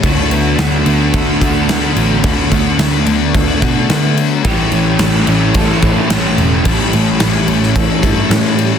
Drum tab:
CC |x-x-x-x-x-x-x-x-|x-x-x-x-x-x-x-x-|x-x-x-x-x-x-x-x-|x-x-x-x-x-x-x-x-|
SD |----o-------o---|----o-------o---|----o-------o---|----o--o----o---|
BD |o-------o-o-----|o-o-----o-o-----|o-------o-o-----|o-------o-o-----|